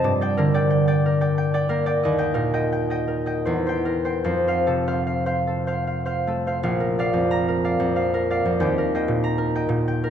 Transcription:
0.04 G2 D5
0.21 D5 G5
0.37 D3 A#4
0.54 D5 G5
0.70 G5
0.88 D5 G5
1.06 A#4
1.21 D5 G5
1.38 G5
1.54 D5 G5
1.69 A#3 A#4
1.86 D5 G5
2.03 D#2 D#5
2.18 D#5 G5
2.34 A#2 A#4
2.54 D#5 G5
2.72 G5
2.90 D#5 G5
3.08 A#4
3.26 D#5 G5
3.45 E2 C5
3.67 C5 G5
3.85 A#4
4.05 C5 G5
4.24 F2 C5
4.48 C5 F5
4.67 C3 A4
4.88 C5 F5
5.07 F5
5.26 C5 F5
5.47 A4
5.67 C5 F5
5.87 F5
6.06 C5 F5
6.27 A3 A4
6.47 C5 F5
6.63 A#1 F5
6.80 A#4
6.99 A#3 D5 F5
7.13 F2
7.31 A#5
7.48 A#4
7.64 D5 F5
7.80 F2
7.96 F5
8.14 A#4
8.30 D5 F5
8.45 F2
8.60 D#2 G5
8.78 A#4
8.95 A#3 D#5 G5
9.08 A#2
9.24 A#5
9.38 A#4
9.55 D#5 G5
9.69 A#2
9.88 G5
10.04 A#4

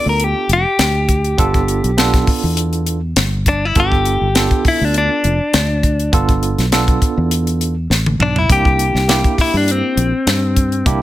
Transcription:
Already playing: B3 D4 F4 A4
0.06 D2 A#4
0.20 closed hi-hat
0.24 G4
0.49 F1, closed hi-hat
0.53 G4
0.79 D2, snare, closed hi-hat
1.09 kick, closed hi-hat
1.24 closed hi-hat
1.38 G1 B3 D4 F4 A4, kick, closed hi-hat
1.54 kick, closed hi-hat
1.68 closed hi-hat
1.84 B1, closed hi-hat
1.97 B3 D4 F4 A4, snare, closed hi-hat
2.14 kick, snare, closed hi-hat
2.27 kick, open hi-hat
2.44 E2
2.57 closed hi-hat
2.73 closed hi-hat
2.86 closed hi-hat
3.16 G1, snare, closed hi-hat
3.46 D4, kick, closed hi-hat
3.65 E4
3.75 G1 B3 D4 F4 A4, kick, closed hi-hat
3.80 G4
3.92 kick
4.05 closed hi-hat
4.21 G1
4.35 B3 D4 F4 A4, snare, closed hi-hat
4.51 kick, closed hi-hat
4.65 E4, kick, open hi-hat
4.81 D2 D4
4.94 D4, closed hi-hat
5.24 F1, closed hi-hat
5.54 D2, snare, closed hi-hat
5.83 kick, closed hi-hat
5.99 closed hi-hat
6.12 G1 B3 D4 F4 A4, kick, closed hi-hat
6.29 kick, closed hi-hat
6.43 closed hi-hat
6.58 B1, snare, closed hi-hat
6.72 B3 D4 F4 A4, snare, closed hi-hat
6.88 kick, closed hi-hat
7.02 muted fingered electric bass stroke, kick, closed hi-hat
7.17 E2
7.31 closed hi-hat
7.47 closed hi-hat
7.61 closed hi-hat
7.90 A1, snare
8.06 high tom
8.19 B1 D4, mid tom
8.36 E4, floor tom
8.49 C2 A#3 D4 E4 G4, kick, closed hi-hat
8.65 kick
8.79 closed hi-hat
8.95 C2, snare
9.08 A#3 D4 E4 G4, snare, closed hi-hat
9.24 kick, closed hi-hat
9.38 E4, kick, snare, open hi-hat
9.54 G2 D4
9.68 C4, closed hi-hat
9.97 A#1, closed hi-hat
10.27 G2, snare, closed hi-hat
10.56 kick, closed hi-hat
10.72 closed hi-hat
10.86 C2 A#3 D4 E4 G4, kick, closed hi-hat

